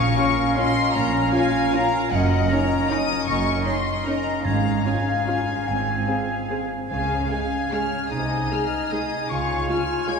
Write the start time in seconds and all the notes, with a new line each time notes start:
Already playing: C#4 A#4 F5 C#6
0.16 C#4 F4 C#5
0.56 C#4 F4 D#5 C6
0.94 A#1 A#2 C#4 A#4 C#5 F5 A#5
1.32 C#4 F4 F5 G#5
1.73 C#4 F4 A#4 F5 A#5
2.11 F#1 F#2 C#4 A#4 D#5 F#5
2.49 C#4 D#4 A#4 C#5 D#5 A#5
2.89 C#4 D#4 A#4 D#5 D#6
3.26 F#1 F#2 C#4 A#4 D#5 C#6
3.65 C#4 D#4 C6
4.04 C#4 D#4 A#4 D#5 A#5
4.44 G#1 G#2 C#4 G#4 F5 A#5
4.83 C#4 F4 G#4 F5 G#5
5.27 C#4 F4
5.66 G#1 G#2 C4 G#4 G#5
6.07 C4 G#4
6.50 C4 G#4
6.89 C#2 C#3 C#4 G#4 F5 G#5
7.30 G#3 C#4 G#4 F5 G#5
7.72 G#3 C#4 G#4 C#5 G#5 F6
8.10 C2 C3 D#4 G#4 D#5 G#5 D#6
8.51 G#3 G#4 F6
8.91 G#3 D#4 G#4 G#5 D#6
9.30 C#2 C#3 F4 C#5 F5 G#5 C#6
9.68 G#3 F4 C#5 G#5 F6
10.07 G#3 F4 C#5 G#5 G#6